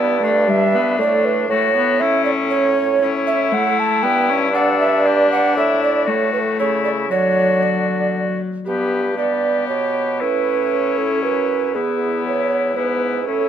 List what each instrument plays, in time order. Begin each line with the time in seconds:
Already playing: bassoon G2, viola B3, oboe E4, recorder D5
0.23 viola A3, oboe D4
0.48 viola G3, recorder E5
0.75 viola B3
0.99 bassoon A2, viola A3, recorder D5
1.25 recorder B4
1.49 bassoon A2, viola A3, oboe F#4, recorder C#5
1.76 viola B3
2.00 viola C#4, oboe E4, recorder E5
2.25 recorder D5
2.50 recorder C#5
3.02 viola C#4, oboe E4
3.27 recorder E5
3.52 viola A3, recorder F#5
3.79 recorder A5
4.03 bassoon G2, viola B3, recorder G5
4.30 viola C#4
4.54 viola D4, oboe A4, recorder F#5
4.79 recorder E5
5.06 oboe G4, recorder D5
5.32 recorder F#5
5.56 bassoon A2, oboe E4, recorder E5
5.83 recorder D5
6.06 bassoon A2, viola A3, oboe F#4, recorder C#5
6.33 recorder B4
6.59 bassoon C#3, oboe E4, recorder C#5
6.85 recorder D5
7.11 bassoon D3, viola F#3, oboe F#4, recorder C#5
7.63 recorder D5
8.66 bassoon G2, viola B3, recorder G4, oboe G4
9.17 viola B3, oboe G4, recorder D5
9.68 bassoon B2, recorder C#5
10.21 bassoon A2, viola C#4, oboe E4, recorder B4
10.97 recorder A4
11.23 bassoon F#2, recorder B4
11.74 bassoon E2, viola B3, oboe E4, recorder G#4
12.27 recorder C#5
12.76 bassoon G#2, viola B3, oboe E4, recorder B4
13.27 bassoon A2, viola C#4, oboe E4, recorder A4